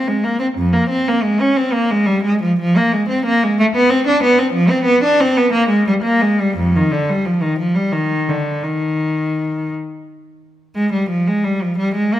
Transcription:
0, 0, Header, 1, 2, 480
1, 0, Start_track
1, 0, Tempo, 655738
1, 422, Time_signature, 6, 3, 24, 8
1, 1385, Tempo, 680272
1, 2345, Tempo, 654308
1, 4265, Tempo, 688863
1, 5705, Tempo, 710900
1, 7145, Tempo, 685714
1, 8635, End_track
2, 0, Start_track
2, 0, Title_t, "Cello"
2, 0, Program_c, 0, 42
2, 58, Note_on_c, 0, 56, 64
2, 174, Note_on_c, 0, 58, 60
2, 180, Note_off_c, 0, 56, 0
2, 291, Note_on_c, 0, 60, 61
2, 298, Note_off_c, 0, 58, 0
2, 341, Note_off_c, 0, 60, 0
2, 422, Note_on_c, 0, 41, 68
2, 537, Note_on_c, 0, 58, 67
2, 539, Note_off_c, 0, 41, 0
2, 654, Note_on_c, 0, 60, 72
2, 659, Note_off_c, 0, 58, 0
2, 775, Note_off_c, 0, 60, 0
2, 791, Note_on_c, 0, 58, 65
2, 897, Note_on_c, 0, 56, 66
2, 907, Note_off_c, 0, 58, 0
2, 1020, Note_off_c, 0, 56, 0
2, 1029, Note_on_c, 0, 61, 65
2, 1144, Note_on_c, 0, 60, 63
2, 1146, Note_off_c, 0, 61, 0
2, 1263, Note_on_c, 0, 58, 67
2, 1264, Note_off_c, 0, 60, 0
2, 1385, Note_off_c, 0, 58, 0
2, 1397, Note_on_c, 0, 56, 71
2, 1505, Note_on_c, 0, 55, 71
2, 1511, Note_off_c, 0, 56, 0
2, 1627, Note_off_c, 0, 55, 0
2, 1628, Note_on_c, 0, 56, 76
2, 1748, Note_off_c, 0, 56, 0
2, 1759, Note_on_c, 0, 53, 60
2, 1872, Note_off_c, 0, 53, 0
2, 1880, Note_on_c, 0, 53, 81
2, 1996, Note_off_c, 0, 53, 0
2, 2003, Note_on_c, 0, 58, 74
2, 2115, Note_on_c, 0, 56, 68
2, 2117, Note_off_c, 0, 58, 0
2, 2228, Note_on_c, 0, 60, 69
2, 2231, Note_off_c, 0, 56, 0
2, 2342, Note_off_c, 0, 60, 0
2, 2350, Note_on_c, 0, 58, 72
2, 2464, Note_off_c, 0, 58, 0
2, 2480, Note_on_c, 0, 56, 69
2, 2591, Note_off_c, 0, 56, 0
2, 2594, Note_on_c, 0, 57, 82
2, 2639, Note_off_c, 0, 57, 0
2, 2713, Note_on_c, 0, 59, 77
2, 2821, Note_on_c, 0, 60, 76
2, 2824, Note_off_c, 0, 59, 0
2, 2939, Note_off_c, 0, 60, 0
2, 2945, Note_on_c, 0, 62, 75
2, 3058, Note_off_c, 0, 62, 0
2, 3063, Note_on_c, 0, 59, 82
2, 3176, Note_off_c, 0, 59, 0
2, 3177, Note_on_c, 0, 60, 68
2, 3280, Note_on_c, 0, 53, 80
2, 3296, Note_off_c, 0, 60, 0
2, 3404, Note_on_c, 0, 60, 72
2, 3406, Note_off_c, 0, 53, 0
2, 3514, Note_on_c, 0, 59, 81
2, 3531, Note_off_c, 0, 60, 0
2, 3645, Note_off_c, 0, 59, 0
2, 3655, Note_on_c, 0, 62, 73
2, 3776, Note_off_c, 0, 62, 0
2, 3776, Note_on_c, 0, 60, 77
2, 3897, Note_on_c, 0, 59, 71
2, 3899, Note_off_c, 0, 60, 0
2, 4015, Note_on_c, 0, 58, 80
2, 4019, Note_off_c, 0, 59, 0
2, 4131, Note_on_c, 0, 56, 71
2, 4137, Note_off_c, 0, 58, 0
2, 4257, Note_off_c, 0, 56, 0
2, 4264, Note_on_c, 0, 55, 73
2, 4312, Note_off_c, 0, 55, 0
2, 4377, Note_on_c, 0, 58, 73
2, 4499, Note_off_c, 0, 58, 0
2, 4505, Note_on_c, 0, 56, 69
2, 4627, Note_off_c, 0, 56, 0
2, 4632, Note_on_c, 0, 55, 64
2, 4752, Note_off_c, 0, 55, 0
2, 4754, Note_on_c, 0, 41, 69
2, 4871, Note_off_c, 0, 41, 0
2, 4886, Note_on_c, 0, 51, 64
2, 4993, Note_on_c, 0, 50, 66
2, 4998, Note_off_c, 0, 51, 0
2, 5111, Note_off_c, 0, 50, 0
2, 5114, Note_on_c, 0, 55, 68
2, 5229, Note_on_c, 0, 53, 58
2, 5230, Note_off_c, 0, 55, 0
2, 5346, Note_on_c, 0, 51, 60
2, 5347, Note_off_c, 0, 53, 0
2, 5465, Note_off_c, 0, 51, 0
2, 5466, Note_on_c, 0, 53, 62
2, 5575, Note_on_c, 0, 55, 61
2, 5583, Note_off_c, 0, 53, 0
2, 5696, Note_on_c, 0, 51, 65
2, 5700, Note_off_c, 0, 55, 0
2, 5937, Note_off_c, 0, 51, 0
2, 5940, Note_on_c, 0, 50, 55
2, 6173, Note_on_c, 0, 51, 55
2, 6182, Note_off_c, 0, 50, 0
2, 6904, Note_off_c, 0, 51, 0
2, 7624, Note_on_c, 0, 56, 64
2, 7738, Note_off_c, 0, 56, 0
2, 7745, Note_on_c, 0, 55, 59
2, 7864, Note_off_c, 0, 55, 0
2, 7865, Note_on_c, 0, 53, 59
2, 7984, Note_off_c, 0, 53, 0
2, 7988, Note_on_c, 0, 56, 58
2, 8102, Note_on_c, 0, 55, 60
2, 8108, Note_off_c, 0, 56, 0
2, 8226, Note_off_c, 0, 55, 0
2, 8232, Note_on_c, 0, 53, 55
2, 8345, Note_on_c, 0, 55, 68
2, 8350, Note_off_c, 0, 53, 0
2, 8460, Note_on_c, 0, 56, 61
2, 8464, Note_off_c, 0, 55, 0
2, 8580, Note_off_c, 0, 56, 0
2, 8589, Note_on_c, 0, 58, 62
2, 8635, Note_off_c, 0, 58, 0
2, 8635, End_track
0, 0, End_of_file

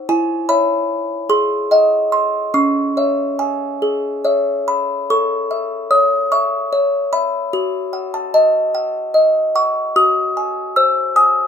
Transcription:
0, 0, Header, 1, 2, 480
1, 0, Start_track
1, 0, Key_signature, 4, "minor"
1, 0, Tempo, 810811
1, 51, Time_signature, 6, 3, 24, 8
1, 1011, Tempo, 846262
1, 2931, Tempo, 809717
1, 6713, End_track
2, 0, Start_track
2, 0, Title_t, "Music box"
2, 0, Program_c, 0, 10
2, 53, Note_on_c, 0, 64, 68
2, 53, Note_on_c, 0, 80, 91
2, 280, Note_off_c, 0, 80, 0
2, 282, Note_off_c, 0, 64, 0
2, 289, Note_on_c, 0, 83, 87
2, 290, Note_on_c, 0, 73, 40
2, 291, Note_on_c, 0, 76, 47
2, 745, Note_off_c, 0, 73, 0
2, 746, Note_off_c, 0, 76, 0
2, 749, Note_off_c, 0, 83, 0
2, 766, Note_on_c, 0, 68, 63
2, 768, Note_on_c, 0, 84, 84
2, 1003, Note_off_c, 0, 68, 0
2, 1013, Note_on_c, 0, 75, 46
2, 1017, Note_on_c, 0, 78, 47
2, 1228, Note_off_c, 0, 84, 0
2, 1247, Note_on_c, 0, 84, 79
2, 1464, Note_off_c, 0, 75, 0
2, 1466, Note_off_c, 0, 78, 0
2, 1476, Note_off_c, 0, 84, 0
2, 1483, Note_on_c, 0, 61, 51
2, 1484, Note_on_c, 0, 85, 73
2, 1718, Note_off_c, 0, 61, 0
2, 1727, Note_on_c, 0, 73, 31
2, 1730, Note_on_c, 0, 76, 39
2, 1966, Note_on_c, 0, 80, 69
2, 2186, Note_off_c, 0, 73, 0
2, 2188, Note_off_c, 0, 76, 0
2, 2209, Note_on_c, 0, 68, 42
2, 2444, Note_off_c, 0, 68, 0
2, 2450, Note_on_c, 0, 73, 35
2, 2454, Note_on_c, 0, 76, 35
2, 2670, Note_off_c, 0, 80, 0
2, 2670, Note_off_c, 0, 85, 0
2, 2696, Note_on_c, 0, 83, 62
2, 2908, Note_off_c, 0, 73, 0
2, 2910, Note_off_c, 0, 76, 0
2, 2923, Note_off_c, 0, 83, 0
2, 2937, Note_on_c, 0, 69, 52
2, 2938, Note_on_c, 0, 85, 71
2, 3177, Note_on_c, 0, 76, 36
2, 3399, Note_off_c, 0, 85, 0
2, 3413, Note_on_c, 0, 73, 43
2, 3413, Note_on_c, 0, 87, 71
2, 3562, Note_off_c, 0, 76, 0
2, 3646, Note_off_c, 0, 87, 0
2, 3657, Note_on_c, 0, 85, 74
2, 3659, Note_on_c, 0, 76, 47
2, 3800, Note_off_c, 0, 73, 0
2, 3899, Note_on_c, 0, 73, 38
2, 4044, Note_off_c, 0, 76, 0
2, 4120, Note_off_c, 0, 85, 0
2, 4137, Note_on_c, 0, 83, 69
2, 4139, Note_on_c, 0, 76, 42
2, 4284, Note_off_c, 0, 73, 0
2, 4358, Note_off_c, 0, 69, 0
2, 4377, Note_on_c, 0, 66, 55
2, 4379, Note_off_c, 0, 76, 0
2, 4613, Note_on_c, 0, 78, 40
2, 4714, Note_off_c, 0, 83, 0
2, 4737, Note_on_c, 0, 81, 64
2, 4849, Note_off_c, 0, 81, 0
2, 4856, Note_on_c, 0, 81, 72
2, 4857, Note_on_c, 0, 75, 43
2, 5000, Note_off_c, 0, 78, 0
2, 5097, Note_on_c, 0, 78, 42
2, 5241, Note_off_c, 0, 75, 0
2, 5332, Note_on_c, 0, 75, 41
2, 5481, Note_off_c, 0, 78, 0
2, 5552, Note_off_c, 0, 81, 0
2, 5576, Note_on_c, 0, 78, 41
2, 5577, Note_on_c, 0, 85, 75
2, 5718, Note_off_c, 0, 75, 0
2, 5793, Note_off_c, 0, 66, 0
2, 5807, Note_off_c, 0, 85, 0
2, 5816, Note_off_c, 0, 78, 0
2, 5816, Note_on_c, 0, 66, 53
2, 5817, Note_on_c, 0, 87, 76
2, 6059, Note_on_c, 0, 80, 39
2, 6276, Note_off_c, 0, 87, 0
2, 6292, Note_on_c, 0, 88, 87
2, 6295, Note_on_c, 0, 72, 46
2, 6439, Note_off_c, 0, 80, 0
2, 6522, Note_off_c, 0, 88, 0
2, 6528, Note_on_c, 0, 87, 91
2, 6529, Note_on_c, 0, 80, 49
2, 6677, Note_off_c, 0, 72, 0
2, 6713, Note_off_c, 0, 66, 0
2, 6713, Note_off_c, 0, 80, 0
2, 6713, Note_off_c, 0, 87, 0
2, 6713, End_track
0, 0, End_of_file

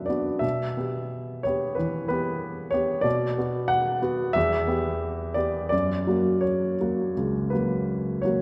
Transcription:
0, 0, Header, 1, 2, 480
1, 0, Start_track
1, 0, Tempo, 673401
1, 307, Time_signature, 4, 2, 24, 8
1, 1269, Tempo, 647249
1, 3669, Tempo, 715990
1, 5949, End_track
2, 0, Start_track
2, 0, Title_t, "Grand piano"
2, 0, Program_c, 0, 0
2, 0, Control_c, 0, 64, 127
2, 0, Note_on_c, 0, 42, 31
2, 0, Note_on_c, 0, 59, 29
2, 0, Note_on_c, 0, 62, 30
2, 0, Note_on_c, 0, 66, 31
2, 0, Note_on_c, 0, 76, 56
2, 0, Note_on_c, 0, 78, 58
2, 41, Note_on_c, 0, 74, 51
2, 65, Note_off_c, 0, 62, 0
2, 65, Note_on_c, 0, 62, 27
2, 67, Note_off_c, 0, 59, 0
2, 67, Note_on_c, 0, 59, 27
2, 68, Note_off_c, 0, 66, 0
2, 68, Note_on_c, 0, 66, 30
2, 280, Note_off_c, 0, 76, 0
2, 280, Note_on_c, 0, 76, 60
2, 281, Note_off_c, 0, 62, 0
2, 282, Note_off_c, 0, 59, 0
2, 283, Note_off_c, 0, 66, 0
2, 293, Note_off_c, 0, 74, 0
2, 294, Note_on_c, 0, 47, 37
2, 321, Control_c, 0, 64, 0
2, 324, Note_off_c, 0, 42, 0
2, 328, Note_off_c, 0, 78, 0
2, 430, Control_c, 0, 64, 127
2, 537, Note_off_c, 0, 47, 0
2, 549, Note_on_c, 0, 59, 28
2, 555, Note_on_c, 0, 67, 30
2, 1006, Note_off_c, 0, 59, 0
2, 1009, Note_off_c, 0, 67, 0
2, 1021, Note_on_c, 0, 73, 58
2, 1022, Note_off_c, 0, 76, 0
2, 1045, Note_on_c, 0, 67, 35
2, 1046, Note_on_c, 0, 59, 33
2, 1247, Note_on_c, 0, 71, 48
2, 1251, Note_off_c, 0, 59, 0
2, 1251, Note_off_c, 0, 67, 0
2, 1262, Note_off_c, 0, 73, 0
2, 1269, Note_on_c, 0, 52, 39
2, 1483, Note_off_c, 0, 71, 0
2, 1494, Note_on_c, 0, 71, 61
2, 1499, Note_off_c, 0, 52, 0
2, 1509, Note_on_c, 0, 59, 33
2, 1509, Note_on_c, 0, 67, 36
2, 1946, Note_off_c, 0, 59, 0
2, 1946, Note_off_c, 0, 67, 0
2, 1955, Note_on_c, 0, 73, 61
2, 1967, Note_off_c, 0, 71, 0
2, 1978, Note_on_c, 0, 59, 34
2, 1980, Note_on_c, 0, 67, 36
2, 2184, Note_on_c, 0, 74, 73
2, 2191, Note_off_c, 0, 59, 0
2, 2192, Note_off_c, 0, 67, 0
2, 2202, Note_on_c, 0, 47, 44
2, 2204, Note_off_c, 0, 73, 0
2, 2225, Control_c, 0, 64, 0
2, 2356, Control_c, 0, 64, 127
2, 2442, Note_off_c, 0, 47, 0
2, 2456, Note_on_c, 0, 59, 35
2, 2458, Note_on_c, 0, 66, 35
2, 2677, Note_on_c, 0, 78, 74
2, 2682, Note_off_c, 0, 74, 0
2, 2909, Note_off_c, 0, 59, 0
2, 2910, Note_off_c, 0, 66, 0
2, 2930, Note_on_c, 0, 59, 40
2, 2934, Note_on_c, 0, 66, 44
2, 3150, Note_off_c, 0, 59, 0
2, 3152, Note_off_c, 0, 66, 0
2, 3162, Note_on_c, 0, 76, 78
2, 3169, Note_off_c, 0, 78, 0
2, 3181, Note_on_c, 0, 40, 52
2, 3193, Control_c, 0, 64, 0
2, 3287, Control_c, 0, 64, 127
2, 3415, Note_off_c, 0, 40, 0
2, 3415, Note_on_c, 0, 59, 39
2, 3424, Note_on_c, 0, 67, 41
2, 3871, Note_off_c, 0, 59, 0
2, 3876, Note_off_c, 0, 67, 0
2, 3888, Note_on_c, 0, 74, 63
2, 3893, Note_off_c, 0, 76, 0
2, 3900, Note_on_c, 0, 59, 31
2, 3903, Note_on_c, 0, 67, 36
2, 4112, Note_off_c, 0, 74, 0
2, 4116, Note_off_c, 0, 59, 0
2, 4118, Note_off_c, 0, 67, 0
2, 4122, Note_on_c, 0, 74, 64
2, 4140, Note_on_c, 0, 42, 41
2, 4155, Control_c, 0, 64, 0
2, 4259, Control_c, 0, 64, 127
2, 4374, Note_on_c, 0, 54, 29
2, 4375, Note_off_c, 0, 42, 0
2, 4378, Note_on_c, 0, 66, 34
2, 4379, Note_on_c, 0, 58, 29
2, 4602, Note_on_c, 0, 73, 54
2, 4613, Note_off_c, 0, 74, 0
2, 4835, Note_off_c, 0, 54, 0
2, 4836, Note_off_c, 0, 66, 0
2, 4837, Note_off_c, 0, 58, 0
2, 4870, Note_on_c, 0, 54, 31
2, 4872, Note_on_c, 0, 58, 31
2, 4872, Note_on_c, 0, 66, 34
2, 5089, Note_off_c, 0, 54, 0
2, 5090, Note_off_c, 0, 58, 0
2, 5091, Note_off_c, 0, 66, 0
2, 5111, Note_on_c, 0, 37, 35
2, 5334, Note_on_c, 0, 71, 50
2, 5345, Note_off_c, 0, 73, 0
2, 5348, Note_off_c, 0, 37, 0
2, 5352, Note_on_c, 0, 58, 29
2, 5354, Note_on_c, 0, 54, 30
2, 5354, Note_on_c, 0, 66, 32
2, 5802, Note_off_c, 0, 58, 0
2, 5803, Note_off_c, 0, 54, 0
2, 5803, Note_off_c, 0, 66, 0
2, 5814, Note_on_c, 0, 73, 52
2, 5820, Note_off_c, 0, 71, 0
2, 5834, Note_on_c, 0, 54, 28
2, 5835, Note_on_c, 0, 58, 28
2, 5840, Note_on_c, 0, 66, 31
2, 5949, Note_off_c, 0, 54, 0
2, 5949, Note_off_c, 0, 58, 0
2, 5949, Note_off_c, 0, 66, 0
2, 5949, Note_off_c, 0, 73, 0
2, 5949, End_track
0, 0, End_of_file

